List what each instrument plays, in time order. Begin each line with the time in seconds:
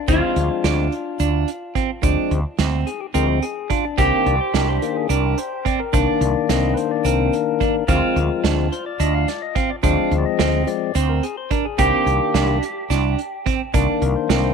Already playing: tonewheel organ D4
0.08 fretless electric bass D2, tonewheel organ F3 G#3 C4, clean electric guitar C4 F4, kick, closed hi-hat, shaker
0.36 fretless electric bass D2, closed hi-hat
0.64 fretless electric bass D2, clean electric guitar D4, snare, closed hi-hat
0.92 closed hi-hat
1.20 fretless electric bass D2, clean electric guitar D4, closed hi-hat, shaker
1.48 closed hi-hat
1.75 clean electric guitar C4, kick, closed hi-hat
2.03 fretless electric bass D2, tonewheel organ F3 G#3 C4, clean electric guitar D4, kick, closed hi-hat, shaker
2.31 fretless electric bass D2, closed hi-hat
2.59 fretless electric bass D2, clean electric guitar C4 D#4, snare, closed hi-hat
2.87 tonewheel organ G#4, closed hi-hat
3.00 tonewheel organ G4
3.14 fretless electric bass D2, tonewheel organ F3 G#3 C4 A#4, clean electric guitar C4, closed hi-hat, shaker
3.42 tonewheel organ G#4, closed hi-hat
3.70 clean electric guitar D4, tonewheel organ F4, kick, closed hi-hat
3.85 tonewheel organ D4
3.98 fretless electric bass C2, tonewheel organ D#3 A#3 D4, clean electric guitar C4 G4, kick, closed hi-hat, shaker
4.26 fretless electric bass C2, tonewheel organ D5, closed hi-hat
4.41 tonewheel organ C5
4.54 fretless electric bass C2, clean electric guitar D4, tonewheel organ A#4, snare, closed hi-hat
4.69 tonewheel organ C5
4.82 tonewheel organ D#3 A#3 D4, closed hi-hat
4.96 tonewheel organ G#4
5.09 fretless electric bass C2, clean electric guitar D4, tonewheel organ A#4, closed hi-hat, shaker
5.38 tonewheel organ C5, closed hi-hat
5.65 clean electric guitar C4, tonewheel organ D5, kick, closed hi-hat
5.79 tonewheel organ A#4
5.93 fretless electric bass C2, tonewheel organ D#3 A#3 D4 C5, clean electric guitar D4, kick, closed hi-hat, shaker
6.07 tonewheel organ D5
6.21 fretless electric bass C2, closed hi-hat
6.49 fretless electric bass C2, clean electric guitar C4, tonewheel organ D#5, snare, closed hi-hat, shaker
6.74 tonewheel organ B4 C5, closed hi-hat
6.91 tonewheel organ D5
7.05 fretless electric bass C2, clean electric guitar C4, tonewheel organ A#4, closed hi-hat, shaker
7.33 closed hi-hat, shaker
7.60 clean electric guitar D4, kick, closed hi-hat, shaker
7.88 fretless electric bass D2, tonewheel organ F3 G#3 C4, clean electric guitar C4 F4, kick, closed hi-hat, shaker
8.16 fretless electric bass D2, closed hi-hat
8.44 fretless electric bass D2, clean electric guitar D4, snare, closed hi-hat
8.72 tonewheel organ C5, closed hi-hat
8.86 tonewheel organ D5
9.00 fretless electric bass D2, clean electric guitar D4, tonewheel organ D#5, closed hi-hat, shaker
9.14 tonewheel organ F5
9.28 tonewheel organ D5, snare, closed hi-hat
9.42 tonewheel organ D#5
9.55 clean electric guitar C4, tonewheel organ F5, kick, closed hi-hat
9.70 tonewheel organ D5
9.83 fretless electric bass D2, tonewheel organ F3 G#3 C4 F5, clean electric guitar D4, kick, closed hi-hat, shaker
10.11 fretless electric bass D2, closed hi-hat
10.18 tonewheel organ D5
10.25 tonewheel organ D#5
10.39 fretless electric bass D2, clean electric guitar C4, snare, closed hi-hat
10.66 tonewheel organ F3 G#3 C4 D5, closed hi-hat
10.95 fretless electric bass D2, clean electric guitar C4, tonewheel organ C5, closed hi-hat, shaker
11.09 tonewheel organ A#4
11.23 tonewheel organ G#4, closed hi-hat
11.37 tonewheel organ C5
11.51 clean electric guitar D4, tonewheel organ A#4, kick, closed hi-hat
11.65 tonewheel organ G#4
11.78 fretless electric bass C2, tonewheel organ D#3 A#3 D4 G4, clean electric guitar C4 G4, kick, closed hi-hat, shaker
12.06 fretless electric bass C2, closed hi-hat
12.34 fretless electric bass C2, clean electric guitar D4, snare, closed hi-hat
12.63 closed hi-hat
12.90 fretless electric bass C2, clean electric guitar D4, snare, closed hi-hat, shaker
13.19 closed hi-hat
13.46 clean electric guitar C4, kick, closed hi-hat
13.74 fretless electric bass C2, tonewheel organ D#3 A#3 D4, clean electric guitar D4, kick, closed hi-hat, shaker
14.02 fretless electric bass C2, tonewheel organ A#4, closed hi-hat, shaker
14.16 tonewheel organ C5
14.29 fretless electric bass C2, clean electric guitar C4, tonewheel organ A#4, snare, closed hi-hat, shaker
14.44 tonewheel organ C5